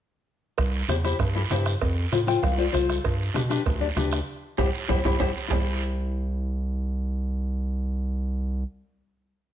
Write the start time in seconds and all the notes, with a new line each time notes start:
0.58 C2, bombo low, bombo rim, cowbell, high conga, long guiro
0.88 E2 E4 G4 C5, bombo rim, high conga, short guiro
1.04 E4 G4 C5, bombo rim, short guiro
1.19 G2, bombo low, bombo rim, cowbell, high conga, low conga, long guiro
1.35 E4 G4 A4
1.50 G2 E4 G4 C5, bombo rim, high conga, low timbale, short guiro
1.66 bombo rim, short guiro
1.81 F2, bombo low, bombo rim, cowbell, high conga, long guiro
2.12 A2 F4 A4 C5, bombo rim, high conga, short guiro
2.27 F4 A4 C5 G5, bombo rim, short guiro
2.43 C2 F5, bombo low, bombo rim, cowbell, high conga, low conga, long guiro
2.58 F4 A4 C5 D5
2.72 C2 F4 A4 C5, bombo low, bombo rim, high conga, short guiro
2.89 A4, bombo rim, short guiro
3.04 G2, bombo low, bombo rim, cowbell, high conga, long guiro
3.34 B2 D4 G4 B4, bombo rim, high conga, short guiro
3.50 D4 G4 B4, bombo rim, short guiro
3.66 D2, bombo low, bombo rim, cowbell, high conga, low conga, long guiro
3.80 D4 G4 D5
3.96 D2 D4 G4 B4, bombo rim, high conga, short guiro
4.11 bombo rim, short guiro
4.57 C2 E4 G4 C5, bombo low, low conga, high timbale, long guiro
4.88 C2 E4 G4 C5, bombo low, low conga, high timbale, long guiro
5.04 C2 E4 G4 C5, bombo low, low conga, high timbale, long guiro
5.19 C2 E4 G4 C5, bombo low, low conga, high timbale, long guiro
5.48 C2 E4 G4, bombo low, low conga, low timbale, long guiro
5.52 C5